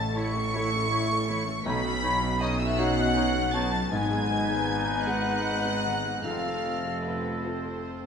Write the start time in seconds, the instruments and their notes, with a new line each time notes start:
Already playing: double bass section A1, felt piano A1, cello section A2, harp A2 A3 A4 C#5, french horn section A3 E4, violin section A5 A6, flute A5
0.00 viola section C#4 A4
0.16 viola section A3 E4, clarinet E4, oboe C#5, harp E5, violin section C#6 C#7, flute C#6
0.35 viola section C#4 A4, harp C#6
0.52 viola section A3 E4, clarinet E4, felt piano E4 A4, oboe C#5, harp E5
0.72 viola section C#4 A4, harp A4
0.91 viola section A3 E4, harp E4, clarinet E4, oboe C#5
1.10 harp A3, viola section C#4 A4
1.28 harp E3, viola section A3 E4, clarinet E4, oboe C#5
1.47 harp A3, viola section C#4 A4
1.66 felt piano B1, double bass section B1, cello section B2, harp B2, viola section B3 D#4, french horn section C#4 D#4, clarinet D#4, oboe C#5, flute B5, violin section B5 B6
1.84 harp F#3, viola section C#4 F#4
2.03 viola section B3 D#4, clarinet D#4, oboe C#5, harp C#5
2.21 viola section C#4 F#4, harp F#4
2.40 viola section B3 D#4, clarinet D#4, oboe C#5, harp D#5, flute D#5, violin section D#5 D#6
2.59 viola section C#4 F#4, flute E5, violin section E5 E6, harp C#6
2.78 viola section B3 D#4, clarinet D#4, felt piano D#4 F#4, oboe C#5, harp D#5, violin section F#5 F#6, flute F#5
2.97 viola section C#4 F#4, harp F#4
3.16 viola section B3 D#4, harp D#4, clarinet D#4, oboe C#5
3.36 harp F#3, viola section C#4 F#4
3.54 harp B3, viola section B3 D#4, clarinet D#4, oboe C#5, violin section A5 A6, flute A5
3.73 harp F#3, viola section C#4 F#4
3.91 double bass section G#1, felt piano G#2, harp G#2, cello section G#2, viola section G#3 D#4, french horn section B3 D#4, clarinet D#4, oboe B4, violin section G#5 G#6, flute G#5
4.11 harp G#3, viola section B3 G#4
4.30 viola section G#3 D#4, harp B4
4.49 viola section B3 G#4, harp G#4
4.67 viola section G#3 D#4, harp D#5
4.87 viola section B3 G#4, harp B5
5.06 viola section G#3 D#4, felt piano D#4 G#4, harp D#5, flute F#5, violin section F#5 F#6
5.25 viola section B3 G#4, harp G#4
5.45 viola section G#3 D#4, harp D#4
5.65 harp G#3, viola section B3 G#4
5.85 harp D#3, viola section G#3 D#4
6.05 harp G#3, viola section B3 G#4
6.24 double bass section F1, felt piano F2, harp F2, cello section F2, french horn section C3 A3, clarinet C4, viola section C4 F4, oboe A4, violin section F5 F6, flute F5
6.45 harp A3, viola section A3 A4
6.66 viola section C4 F4
6.85 viola section A3 A4, harp A4
7.04 violin section B3 B4, viola section C4 F4, harp F5
7.25 viola section A3 A4, harp C6
7.44 violin section C4 C5, viola section C4 F4, felt piano F4 A4, harp F5
7.64 viola section A3 A4, harp A4
7.84 viola section C4 F4, harp F4